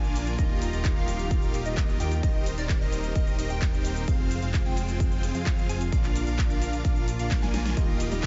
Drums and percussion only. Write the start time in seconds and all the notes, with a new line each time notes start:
0.04 closed hi-hat, shaker
0.16 open hi-hat, shaker
0.27 closed hi-hat, shaker
0.39 kick, closed hi-hat, shaker
0.62 open hi-hat, shaker
0.73 closed hi-hat, shaker
0.85 kick, clap, closed hi-hat, shaker
1.08 open hi-hat, shaker
1.19 closed hi-hat, shaker
1.31 kick, closed hi-hat, shaker
1.42 closed hi-hat, shaker
1.54 open hi-hat, shaker
1.66 closed hi-hat, shaker
1.77 kick, clap, closed hi-hat, shaker
1.89 shaker
2.00 open hi-hat, shaker
2.12 closed hi-hat, shaker
2.23 kick, closed hi-hat, shaker
2.46 open hi-hat, shaker
2.58 closed hi-hat, shaker
2.69 kick, clap, closed hi-hat, shaker
2.92 open hi-hat, shaker
3.04 closed hi-hat, shaker
3.16 kick, closed hi-hat, shaker
3.27 closed hi-hat, shaker
3.39 open hi-hat, shaker
3.50 closed hi-hat, shaker
3.62 kick, clap, closed hi-hat, shaker
3.74 shaker
3.85 open hi-hat, shaker
3.96 closed hi-hat, shaker
4.08 kick, closed hi-hat, shaker
4.31 open hi-hat, shaker
4.42 closed hi-hat, shaker
4.54 kick, clap, closed hi-hat, shaker
4.77 open hi-hat, shaker
4.89 closed hi-hat, shaker
5.00 kick, closed hi-hat, shaker
5.12 closed hi-hat, shaker
5.23 open hi-hat, shaker
5.35 closed hi-hat, shaker
5.46 kick, clap, closed hi-hat, shaker
5.58 shaker
5.69 open hi-hat, shaker
5.81 closed hi-hat, shaker
5.92 kick, closed hi-hat, shaker
6.04 clap, closed hi-hat, shaker
6.16 open hi-hat, shaker
6.27 closed hi-hat, shaker
6.39 kick, clap, closed hi-hat, shaker
6.50 closed hi-hat, shaker
6.62 open hi-hat, shaker
6.73 closed hi-hat, shaker
6.85 kick, closed hi-hat, shaker
6.96 closed hi-hat, shaker
7.08 open hi-hat, shaker
7.19 closed hi-hat, shaker
7.31 kick, snare, clap, closed hi-hat, shaker
7.42 snare, closed hi-hat, shaker
7.54 snare, open hi-hat, shaker
7.66 snare, closed hi-hat, shaker
7.77 kick, closed hi-hat, shaker
8.00 open hi-hat, ride, shaker
8.12 closed hi-hat, shaker
8.23 kick, clap, closed hi-hat